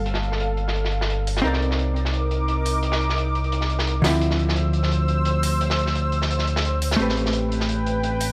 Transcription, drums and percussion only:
0.06 closed hi-hat
0.14 snare
0.23 closed hi-hat
0.32 snare
0.40 closed hi-hat
0.57 closed hi-hat
0.68 snare
0.75 closed hi-hat
0.85 snare
0.92 closed hi-hat
1.01 snare
1.10 closed hi-hat
1.27 closed hi-hat, open hi-hat
1.37 snare
1.45 closed hi-hat
1.54 snare
1.62 closed hi-hat
1.71 snare
1.79 closed hi-hat
1.96 closed hi-hat
2.05 snare
2.14 closed hi-hat
2.31 closed hi-hat
2.48 closed hi-hat
2.65 closed hi-hat, open hi-hat
2.83 closed hi-hat
2.92 snare
3.01 closed hi-hat
3.09 snare
3.18 closed hi-hat
3.35 closed hi-hat
3.44 closed hi-hat
3.52 closed hi-hat
3.61 snare
3.70 closed hi-hat
3.79 snare
3.87 closed hi-hat
4.04 snare, closed hi-hat, open hi-hat
4.21 closed hi-hat
4.31 snare
4.39 closed hi-hat
4.49 snare
4.56 closed hi-hat
4.73 closed hi-hat
4.83 snare
4.91 closed hi-hat
5.08 closed hi-hat
5.25 closed hi-hat
5.43 closed hi-hat, open hi-hat
5.61 closed hi-hat
5.70 snare
5.79 closed hi-hat
5.86 snare
5.95 closed hi-hat
6.12 closed hi-hat
6.22 snare
6.30 closed hi-hat
6.39 snare
6.47 closed hi-hat
6.56 snare
6.65 closed hi-hat
6.82 closed hi-hat, open hi-hat
6.91 snare
6.99 closed hi-hat
7.09 snare
7.17 closed hi-hat
7.26 snare
7.33 closed hi-hat
7.52 closed hi-hat
7.60 snare
7.69 closed hi-hat
7.87 closed hi-hat
8.04 closed hi-hat
8.20 closed hi-hat, open hi-hat

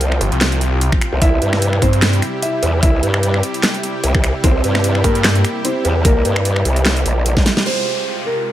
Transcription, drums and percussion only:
0.01 closed hi-hat
0.12 finger snap
0.21 closed hi-hat
0.32 closed hi-hat
0.41 snare, clap, closed hi-hat
0.52 closed hi-hat
0.61 closed hi-hat
0.81 closed hi-hat
0.92 finger snap, kick
1.01 finger snap, closed hi-hat
1.22 kick, closed hi-hat
1.42 closed hi-hat
1.53 finger snap, snare
1.62 closed hi-hat
1.73 finger snap
1.82 kick, closed hi-hat
1.93 closed hi-hat
2.02 finger snap, snare, clap, closed hi-hat
2.13 closed hi-hat
2.22 finger snap, closed hi-hat
2.42 closed hi-hat
2.63 closed hi-hat
2.83 kick, closed hi-hat
3.03 closed hi-hat
3.14 finger snap
3.23 closed hi-hat
3.34 finger snap
3.43 closed hi-hat
3.54 closed hi-hat
3.63 snare, clap, closed hi-hat
3.74 closed hi-hat
3.83 closed hi-hat
4.04 closed hi-hat
4.15 finger snap, kick
4.24 finger snap, closed hi-hat
4.44 kick, closed hi-hat
4.64 closed hi-hat
4.75 finger snap, snare
4.84 closed hi-hat
4.95 finger snap
5.04 kick, closed hi-hat
5.15 closed hi-hat
5.24 finger snap, snare, clap, closed hi-hat
5.35 closed hi-hat
5.45 finger snap, closed hi-hat
5.65 closed hi-hat
5.85 closed hi-hat
6.05 kick, closed hi-hat
6.25 closed hi-hat
6.36 finger snap
6.45 closed hi-hat
6.56 finger snap
6.65 closed hi-hat
6.76 closed hi-hat
6.86 snare, clap, closed hi-hat
6.97 closed hi-hat
7.06 closed hi-hat
7.26 closed hi-hat
7.37 kick, snare
7.46 snare, closed hi-hat
7.57 snare
7.66 crash

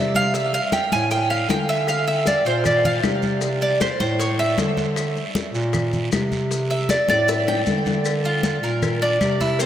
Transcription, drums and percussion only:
0.14 high conga, short guiro, maracas
0.34 high bongo, high conga, long guiro, maracas
0.53 high bongo, high conga, maracas
0.72 high bongo, high conga, short guiro, claves, maracas
0.92 high conga, short guiro, maracas
1.10 high bongo, high conga, long guiro, maracas
1.30 high bongo, high conga, claves, maracas
1.49 high bongo, low bongo, high conga, short guiro, maracas
1.68 high bongo, short guiro, maracas
1.87 high bongo, high conga, long guiro, claves, maracas
2.07 high conga, maracas
2.25 high bongo, high conga, short guiro, maracas
2.45 high conga, short guiro, maracas
2.64 high bongo, high conga, low conga, long guiro, claves, maracas
2.84 high conga, low conga, maracas
3.03 high bongo, low bongo, high conga, short guiro, claves, maracas
3.22 high conga, short guiro, maracas
3.41 high bongo, high conga, long guiro, maracas
3.61 high bongo, high conga, maracas
3.80 high bongo, high conga, short guiro, claves, maracas
3.99 high conga, short guiro, maracas
4.19 high bongo, high conga, long guiro, maracas
4.39 high bongo, high conga, claves, maracas
4.58 high bongo, low bongo, high conga, short guiro, maracas
4.77 high bongo, high conga, short guiro, maracas
4.96 high bongo, high conga, long guiro, claves, maracas
5.16 high conga, maracas
5.35 high bongo, high conga, short guiro, maracas
5.54 high conga, short guiro, maracas
5.73 high bongo, high conga, low conga, long guiro, claves, maracas
5.93 high conga, low conga, maracas
6.12 high bongo, low bongo, high conga, short guiro, claves, maracas
6.32 high conga, short guiro, maracas
6.51 high bongo, high conga, long guiro, maracas
6.70 high bongo, high conga, maracas
6.89 high bongo, high conga, short guiro, claves, maracas
7.08 high bongo, high conga, short guiro, maracas
7.28 high bongo, high conga, long guiro, maracas
7.47 low bongo, high conga, claves, maracas
7.66 low bongo, high conga, short guiro, maracas
7.85 low bongo, high conga, short guiro, maracas
8.05 cowbell, high conga, long guiro, claves, maracas
8.24 high conga, maracas
8.43 cowbell, high conga, short guiro, maracas
8.63 high conga, short guiro, maracas
8.82 cowbell, high conga, low conga, long guiro, claves, maracas
9.02 high conga, maracas
9.21 cowbell, high conga, short guiro, claves, maracas
9.40 high conga, short guiro, maracas
9.59 cowbell, high conga, long guiro, maracas

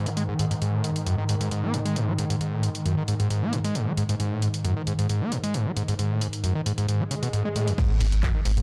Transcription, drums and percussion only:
0.06 closed hi-hat
0.17 closed hi-hat
0.39 closed hi-hat
0.51 closed hi-hat
0.62 closed hi-hat
0.84 closed hi-hat
0.96 closed hi-hat
1.06 closed hi-hat
1.29 closed hi-hat
1.41 closed hi-hat
1.51 closed hi-hat
1.74 closed hi-hat
1.86 closed hi-hat
1.96 closed hi-hat
2.18 closed hi-hat
2.30 closed hi-hat
2.41 closed hi-hat
2.63 closed hi-hat
2.75 closed hi-hat
2.86 closed hi-hat
3.08 closed hi-hat
3.20 closed hi-hat
3.30 closed hi-hat
3.53 closed hi-hat
3.65 closed hi-hat
3.75 closed hi-hat
3.97 closed hi-hat
4.09 closed hi-hat
4.20 closed hi-hat
4.42 closed hi-hat
4.54 closed hi-hat
4.65 closed hi-hat
4.87 closed hi-hat
4.99 closed hi-hat
5.09 closed hi-hat
5.32 closed hi-hat
5.44 closed hi-hat
5.54 closed hi-hat
5.77 closed hi-hat
5.88 closed hi-hat
5.99 closed hi-hat
6.21 closed hi-hat
6.33 closed hi-hat
6.44 closed hi-hat
6.66 closed hi-hat
6.78 closed hi-hat
6.88 closed hi-hat
7.11 closed hi-hat
7.23 closed hi-hat
7.33 closed hi-hat
7.56 closed hi-hat
7.67 closed hi-hat
7.78 kick, closed hi-hat, ride, crash
8.00 closed hi-hat, open hi-hat
8.12 snare, closed hi-hat
8.23 kick, snare, clap, closed hi-hat, ride
8.45 closed hi-hat, open hi-hat
8.57 closed hi-hat

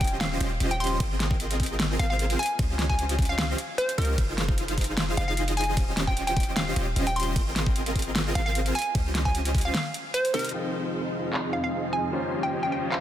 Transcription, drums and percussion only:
0.01 kick, closed hi-hat
0.04 closed hi-hat
0.07 closed hi-hat
0.21 snare, closed hi-hat, ride
0.41 closed hi-hat
0.60 closed hi-hat
0.71 closed hi-hat
0.80 closed hi-hat
0.84 closed hi-hat
0.87 closed hi-hat
1.00 kick, closed hi-hat, ride
1.20 snare, closed hi-hat
1.31 kick
1.40 closed hi-hat
1.51 closed hi-hat
1.60 kick, closed hi-hat
1.63 closed hi-hat
1.66 closed hi-hat
1.80 snare, closed hi-hat, ride
1.99 closed hi-hat
2.19 closed hi-hat
2.30 closed hi-hat
2.39 closed hi-hat
2.43 closed hi-hat
2.46 closed hi-hat
2.59 kick, closed hi-hat, ride
2.79 snare, closed hi-hat
2.90 kick
2.99 closed hi-hat
3.09 closed hi-hat
3.19 kick, closed hi-hat
3.22 closed hi-hat
3.25 closed hi-hat
3.38 snare, closed hi-hat, ride
3.58 closed hi-hat
3.78 closed hi-hat
3.89 closed hi-hat
3.98 closed hi-hat
4.02 closed hi-hat
4.05 closed hi-hat
4.18 kick, closed hi-hat, ride
4.38 snare, closed hi-hat
4.49 kick
4.58 closed hi-hat
4.68 closed hi-hat
4.78 kick, closed hi-hat
4.81 closed hi-hat
4.84 closed hi-hat
4.97 snare, closed hi-hat, ride
5.17 closed hi-hat
5.37 closed hi-hat
5.48 closed hi-hat
5.57 closed hi-hat
5.61 closed hi-hat
5.64 closed hi-hat
5.77 kick, closed hi-hat, ride
5.97 snare, closed hi-hat
6.07 kick
6.17 closed hi-hat
6.27 closed hi-hat
6.37 kick, closed hi-hat
6.40 closed hi-hat
6.43 closed hi-hat
6.57 snare, closed hi-hat, ride
6.76 closed hi-hat
6.96 closed hi-hat
7.07 closed hi-hat
7.16 closed hi-hat
7.20 closed hi-hat
7.23 closed hi-hat
7.36 kick, closed hi-hat, ride
7.56 snare, closed hi-hat
7.66 kick
7.76 closed hi-hat
7.86 closed hi-hat
7.96 kick, closed hi-hat
7.99 closed hi-hat
8.02 closed hi-hat
8.16 snare, closed hi-hat, ride
8.35 closed hi-hat
8.55 closed hi-hat
8.66 closed hi-hat
8.75 closed hi-hat
8.79 closed hi-hat
8.82 closed hi-hat
8.95 kick, closed hi-hat, ride
9.15 snare, closed hi-hat
9.25 kick
9.35 closed hi-hat
9.45 closed hi-hat
9.55 kick, closed hi-hat
9.58 closed hi-hat
9.61 closed hi-hat
9.74 snare, closed hi-hat, ride
9.94 closed hi-hat
10.14 closed hi-hat
10.25 closed hi-hat
10.34 closed hi-hat
10.39 closed hi-hat
10.45 closed hi-hat
10.49 closed hi-hat
11.33 clap
12.92 clap

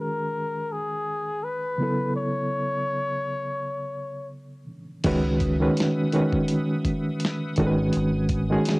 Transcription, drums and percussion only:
5.04 kick, closed hi-hat, crash
5.40 kick, closed hi-hat
5.77 snare, closed hi-hat
6.12 closed hi-hat
6.32 kick
6.48 closed hi-hat
6.85 kick, closed hi-hat
7.20 closed hi-hat
7.25 snare
7.56 kick, closed hi-hat
7.93 closed hi-hat
8.29 kick, closed hi-hat
8.65 snare, closed hi-hat

